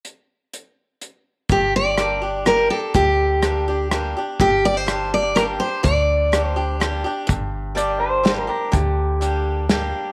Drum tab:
HH |x-x-x-|x-x-x-|x-x-x-|x-x-x-|
SD |------|--r-r-|--r-r-|--r-r-|
BD |------|o-----|o-----|o-----|

HH |x-x-x-|x-x-x-|x-x-x-|
SD |--r-r-|----o-|----o-|
BD |o-----|o-----|o-----|